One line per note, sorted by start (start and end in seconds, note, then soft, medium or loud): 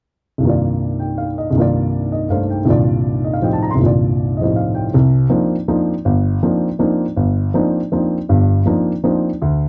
0.38 1.49 C2 soft
0.38 1.51 G2 soft
0.43 1.54 D#3 soft
0.43 1.56 A#3 soft
0.47 1.57 F4 soft
0.47 1.58 D5 soft
0.99 1.26 G5 soft
1.18 1.47 F5 soft
1.38 1.64 D#5 soft
1.51 2.63 C2 soft
1.51 2.27 G2 soft
1.55 2.65 D#3 soft
1.55 2.69 A#3 soft
1.60 2.67 F4 soft
1.60 2.69 D5 soft
2.12 2.38 D#5 soft
2.29 2.64 G2 soft
2.29 2.68 A3 soft
2.29 2.67 D4 soft
2.29 2.68 D#4 soft
2.29 2.68 C5 soft
2.29 2.59 F5 soft
2.50 2.76 G5 soft
2.65 3.74 C2 soft
2.65 3.76 G2 soft
2.65 3.80 A#2 soft
2.65 3.78 D#3 soft
2.65 3.80 F4 soft
2.70 3.81 D5 soft
3.25 3.36 D#5 soft
3.33 3.46 F5 soft
3.42 3.79 A2 soft
3.42 3.80 F3 soft
3.42 3.80 C4 soft
3.42 3.80 G4 soft
3.42 3.81 D#5 soft
3.42 3.60 G5 soft
3.53 3.68 A5 soft
3.62 3.74 A#5 soft
3.71 3.84 C6 soft
3.75 4.90 C2 soft
3.75 4.91 G2 soft
3.79 4.93 A#2 soft
3.79 4.92 D#3 soft
3.84 4.94 F4 soft
3.84 4.95 D5 soft
4.37 4.92 A2 soft
4.37 4.42 D#5 soft
4.41 4.92 F3 soft
4.41 4.92 C4 soft
4.41 4.93 G4 soft
4.41 4.93 D#5 soft
4.56 4.84 F5 soft
4.75 5.00 G5 soft
4.94 5.26 C2 medium
4.94 5.25 C3 medium
5.30 5.55 F3 soft
5.30 5.55 A#3 soft
5.30 5.55 C4 soft
5.30 5.55 D4 soft
5.30 5.55 D#4 soft
5.68 5.93 F3 soft
5.68 5.93 A#3 soft
5.68 5.93 C4 soft
5.68 5.93 D4 soft
5.68 5.93 D#4 soft
6.05 6.37 G1 medium
6.43 6.68 F3 soft
6.43 6.67 A#3 soft
6.43 6.68 C4 soft
6.43 6.68 D4 soft
6.43 6.68 D#4 soft
6.79 7.04 F3 soft
6.79 7.05 A#3 soft
6.79 7.05 C4 soft
6.79 7.05 D4 soft
6.79 7.05 D#4 medium
7.17 7.49 G1 medium
7.54 7.79 F3 soft
7.54 7.80 A#3 soft
7.54 7.79 C4 soft
7.54 7.79 D4 soft
7.54 7.80 D#4 medium
7.92 8.17 F3 soft
7.92 8.17 A#3 soft
7.92 8.17 C4 soft
7.92 8.17 D4 soft
7.92 8.17 D#4 soft
8.29 8.61 G1 medium
8.29 8.61 G2 medium
8.66 8.91 F3 soft
8.66 8.92 A#3 soft
8.66 8.92 C4 soft
8.66 8.92 D4 soft
8.66 8.92 D#4 soft
9.04 9.29 F3 soft
9.04 9.29 A#3 soft
9.04 9.29 C4 soft
9.04 9.29 D4 soft
9.04 9.29 D#4 soft
9.42 9.69 D2 medium